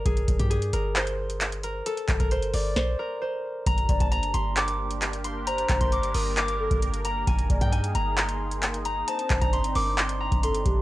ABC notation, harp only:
X:1
M:4/4
L:1/16
Q:1/4=133
K:Gm
V:1 name="Harp"
_A3 G A2 B2 c6 B2 | A3 B c2 d2 c2 B2 c2 z2 | b3 a b2 c'2 d'6 c'2 | b3 c' d'2 e'2 d'6 b2 |
_a3 g a2 b2 c'6 b2 | a3 b c'2 d'2 c'2 b2 c'2 z2 |]